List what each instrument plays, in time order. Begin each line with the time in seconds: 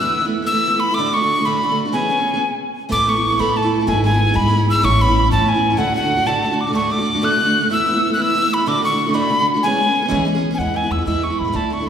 0.00 upright bass E2, steel-string acoustic guitar E3 A3 B3 E4, tin whistle E6
0.18 steel-string acoustic guitar E3 A3 B3 E4
0.25 steel-string acoustic guitar A3 B3 E4
0.42 steel-string acoustic guitar A3 B3 E4
0.46 upright bass E3, tin whistle E6
0.51 steel-string acoustic guitar E3 A3 B3 E4
0.67 steel-string acoustic guitar E3 A3 B3 E4
0.74 steel-string acoustic guitar A3 B3 E4
0.80 tin whistle B5
0.91 steel-string acoustic guitar A3 B3 E4, tin whistle D6
0.97 upright bass D2, steel-string acoustic guitar D2 A2 D3 A3 D4 F#4
1.14 steel-string acoustic guitar D3 A3 D4 F#4, tin whistle C#6
1.21 steel-string acoustic guitar D3 A3 D4 F#4
1.38 steel-string acoustic guitar D3 A3 D4 F#4
1.45 steel-string acoustic guitar D2 A2 D3 A3 D4 F#4, tin whistle B5
1.62 steel-string acoustic guitar D3 A3 D4 F#4
1.69 steel-string acoustic guitar D3 A3 D4 F#4
1.85 steel-string acoustic guitar D3 A3 D4 F#4
1.92 upright bass E2, steel-string acoustic guitar E3 G#3 B3 C#4 G#4, tin whistle G#5
2.08 steel-string acoustic guitar G#3 B3 C#4 G#4
2.17 steel-string acoustic guitar B3 C#4 G#4
2.34 steel-string acoustic guitar B3 C#4 G#4
2.89 upright bass A1, steel-string acoustic guitar A2 A3 B3 E4 A4, tin whistle D6
3.06 steel-string acoustic guitar A3 B3 E4 A4, tin whistle C#6
3.15 steel-string acoustic guitar B3 E4 A4
3.30 steel-string acoustic guitar B3 E4 A4
3.38 steel-string acoustic guitar A2 A3 B3 E4 A4, upright bass A2, tin whistle B5
3.56 steel-string acoustic guitar A3 B3 E4 A4, tin whistle A5
3.62 steel-string acoustic guitar B3 E4 A4
3.79 steel-string acoustic guitar B3 E4 A4
3.87 upright bass G#1, steel-string acoustic guitar G#3 B3 E4 G#4, tin whistle G#5
4.04 steel-string acoustic guitar G#3 B3 E4 G#4, tin whistle G#5
4.10 steel-string acoustic guitar B3 E4 G#4
4.27 steel-string acoustic guitar B3 E4 G#4
4.34 upright bass G#2, steel-string acoustic guitar G#3 B3 E4 G#4, tin whistle B5
4.49 steel-string acoustic guitar G#3 B3 E4 G#4
4.57 steel-string acoustic guitar B3 E4 G#4
4.70 steel-string acoustic guitar G#4, tin whistle E6
4.75 steel-string acoustic guitar B3 E4
4.82 upright bass A1, steel-string acoustic guitar A2 E3 B3 C#4 E4, tin whistle C#6
5.00 steel-string acoustic guitar E3 B3 C#4 E4, tin whistle B5
5.08 steel-string acoustic guitar B3 C#4 E4
5.24 steel-string acoustic guitar B3 C#4 E4
5.31 steel-string acoustic guitar A2 E3 B3 C#4 E4, upright bass A2, tin whistle A5
5.46 steel-string acoustic guitar E3 B3 C#4 E4, tin whistle G#5
5.55 steel-string acoustic guitar B3 C#4 E4
5.70 steel-string acoustic guitar B3 C#4 E4
5.77 steel-string acoustic guitar D2 A2 D3 A3 D4 F#4, upright bass D2, tin whistle F#5
5.94 steel-string acoustic guitar D3 A3 D4 F#4, tin whistle F#5
6.02 steel-string acoustic guitar D3 A3 D4 F#4
6.17 steel-string acoustic guitar D3 A3 D4 F#4
6.26 steel-string acoustic guitar D2 A2 D3 A3 D4 F#4, upright bass D3, tin whistle A5
6.43 steel-string acoustic guitar D3 A3 D4 F#4
6.51 steel-string acoustic guitar D3 A3 D4 F#4
6.60 tin whistle D6
6.67 steel-string acoustic guitar D3 A3 D4 F#4
6.73 steel-string acoustic guitar D2 A2 D3 A3 D4 F#4, upright bass D2, tin whistle C#6
6.90 steel-string acoustic guitar D3 A3 D4 F#4, tin whistle D6
6.98 steel-string acoustic guitar D3 A3 D4 F#4
7.14 steel-string acoustic guitar D3 A3 D4 F#4
7.21 steel-string acoustic guitar D2 A2 D3 A3 D4 F#4, upright bass D3, tin whistle F#6
7.37 steel-string acoustic guitar D3 A3 D4 F#4
7.45 steel-string acoustic guitar D3 A3 D4 F#4
7.61 steel-string acoustic guitar D3 A3 D4 F#4
7.70 upright bass E2, steel-string acoustic guitar E3 A3 B3 E4, tin whistle E6
7.85 steel-string acoustic guitar E3 A3 B3 E4
7.93 steel-string acoustic guitar A3 B3 E4
8.09 steel-string acoustic guitar A3 B3 E4
8.14 steel-string acoustic guitar E3 B3, tin whistle F#6
8.18 upright bass E3, steel-string acoustic guitar A3 E4, tin whistle E6
8.33 steel-string acoustic guitar E3 A3 B3 E4
8.42 steel-string acoustic guitar A3 B3 E4
8.54 steel-string acoustic guitar E4, tin whistle B5
8.60 steel-string acoustic guitar A3 B3
8.66 steel-string acoustic guitar D2 A2 D3 A3 D4 F#4, upright bass D2, tin whistle D6
8.82 steel-string acoustic guitar D3 A3 D4 F#4, tin whistle C#6
8.91 steel-string acoustic guitar D3 A3 D4 F#4
9.06 steel-string acoustic guitar D3 A3 D4 F#4
9.13 steel-string acoustic guitar D2 A2 D3 A3 D4 F#4, tin whistle B5
9.30 steel-string acoustic guitar D3 A3 D4 F#4
9.39 steel-string acoustic guitar D3 A3 D4 F#4
9.54 steel-string acoustic guitar D3 A3 D4 F#4
9.63 upright bass E2, steel-string acoustic guitar E3 G#3 B3 C#4 G#4, tin whistle G#5
9.80 steel-string acoustic guitar G#3 B3 C#4 G#4
9.87 steel-string acoustic guitar B3 C#4 G#4
10.02 steel-string acoustic guitar B3 C#4 G#4
10.08 steel-string acoustic guitar E3 G#3 B3 C#4 G#4, upright bass E3
10.25 steel-string acoustic guitar G#3 B3 C#4 G#4
10.35 steel-string acoustic guitar B3 C#4 G#4
10.51 steel-string acoustic guitar B3 C#4 G#4, tin whistle G#5
10.58 upright bass E2, steel-string acoustic guitar E3 G#3 B3 E4, tin whistle F#5
10.74 steel-string acoustic guitar E3 G#3 B3 E4, tin whistle G#5
10.84 steel-string acoustic guitar G#3 B3 E4
10.91 upright bass E2, tin whistle E6
10.99 steel-string acoustic guitar G#3 B3 E4
11.06 upright bass E2, steel-string acoustic guitar E3 G#3 B3 E4, tin whistle E6
11.22 steel-string acoustic guitar E3 G#3 B3 E4, tin whistle C#6
11.30 steel-string acoustic guitar G#3 B3 E4
11.39 upright bass A1, tin whistle B5
11.45 steel-string acoustic guitar G#3 B3 E4
11.53 steel-string acoustic guitar D2 A2 D3 A3 D4 E4, upright bass D2, tin whistle A5
11.70 steel-string acoustic guitar D3 A3 D4 E4, tin whistle C#6
11.80 steel-string acoustic guitar D3 A3 D4 E4
11.84 tin whistle B5 C#6